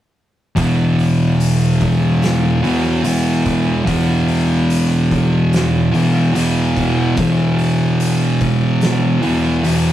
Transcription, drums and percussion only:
0.57 kick loud
0.57 open hi-hat medium
0.99 open hi-hat soft
1.40 open hi-hat medium
1.81 kick medium
1.81 open hi-hat medium
2.22 snare loud
2.22 open hi-hat medium
2.64 open hi-hat soft
3.04 open hi-hat medium
3.46 kick medium
3.46 snare soft
3.46 open hi-hat medium
3.87 kick loud
3.87 open hi-hat medium
4.29 open hi-hat soft
4.70 open hi-hat medium
5.11 kick medium
5.11 open hi-hat soft
5.53 snare loud
5.53 open hi-hat medium
5.94 open hi-hat soft
6.35 open hi-hat medium
6.77 kick medium
6.77 open hi-hat soft
7.17 kick loud
7.17 open hi-hat medium
7.59 open hi-hat soft
8.00 open hi-hat medium
8.40 kick medium
8.40 open hi-hat soft
8.81 snare loud
8.81 open hi-hat medium
9.23 open hi-hat soft
9.64 open hi-hat medium

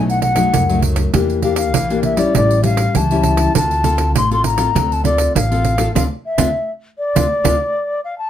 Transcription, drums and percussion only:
0.10 pandeiro soft
0.22 pandeiro medium
0.36 pandeiro medium
0.54 pandeiro medium
0.70 pandeiro soft
0.82 pandeiro medium
0.96 pandeiro medium
1.14 pandeiro medium
1.30 pandeiro soft
1.42 pandeiro soft
1.56 pandeiro medium
1.74 pandeiro medium
1.90 pandeiro soft
2.03 pandeiro medium
2.17 pandeiro medium
2.35 pandeiro medium
2.51 pandeiro soft
2.64 pandeiro medium
2.77 pandeiro medium
2.95 pandeiro medium
3.11 pandeiro soft
3.23 pandeiro medium
3.37 pandeiro medium
3.55 pandeiro medium
3.71 pandeiro soft
3.84 pandeiro medium
3.98 pandeiro medium
4.16 pandeiro medium
4.31 pandeiro soft
4.44 pandeiro medium
4.58 pandeiro medium
4.76 pandeiro medium
4.92 pandeiro soft
5.05 pandeiro medium
5.18 pandeiro medium
5.36 pandeiro medium
5.52 pandeiro soft
5.65 pandeiro medium
5.78 pandeiro medium
5.96 pandeiro medium
6.38 pandeiro medium
7.16 pandeiro loud
7.45 pandeiro medium

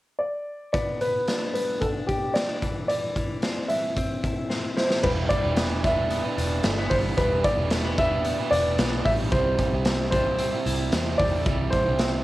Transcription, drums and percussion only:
0.74 kick loud
0.74 closed hi-hat medium
1.01 closed hi-hat medium
1.28 snare medium
1.28 closed hi-hat medium
1.55 closed hi-hat medium
1.82 kick medium
1.82 closed hi-hat medium
2.09 kick medium
2.09 closed hi-hat medium
2.35 snare loud
2.35 closed hi-hat medium
2.62 kick medium
2.62 closed hi-hat medium
2.90 closed hi-hat medium
3.16 kick medium
3.16 closed hi-hat medium
3.42 snare medium
3.42 closed hi-hat medium
3.70 closed hi-hat medium
3.97 kick medium
3.97 closed hi-hat medium
4.24 kick medium
4.24 closed hi-hat medium
4.50 snare soft
4.77 snare medium
4.91 snare medium
5.03 kick loud
5.03 crash medium
5.30 kick medium
5.30 closed hi-hat medium
5.57 snare loud
5.57 closed hi-hat medium
5.84 kick medium
5.84 closed hi-hat medium
6.11 closed hi-hat medium
6.38 closed hi-hat medium
6.64 snare loud
6.64 closed hi-hat medium
6.90 kick medium
6.90 open hi-hat medium
7.18 kick loud
7.18 closed hi-hat medium
7.44 kick medium
7.44 closed hi-hat medium
7.70 snare medium
7.70 closed hi-hat medium
7.98 kick loud
7.98 closed hi-hat medium
8.25 closed hi-hat medium
8.53 closed hi-hat medium
8.78 snare loud
8.78 closed hi-hat medium
9.05 kick medium
9.05 open hi-hat medium
9.32 kick loud
9.32 closed hi-hat medium
9.58 kick medium
9.58 closed hi-hat medium
9.85 snare loud
9.85 closed hi-hat medium
10.12 kick loud
10.12 closed hi-hat medium
10.39 closed hi-hat medium
10.66 closed hi-hat medium
10.92 snare loud
10.92 closed hi-hat medium
11.19 kick medium
11.19 open hi-hat medium
11.46 kick loud
11.46 closed hi-hat medium
11.72 kick medium
11.72 closed hi-hat medium
11.99 snare loud
11.99 closed hi-hat medium

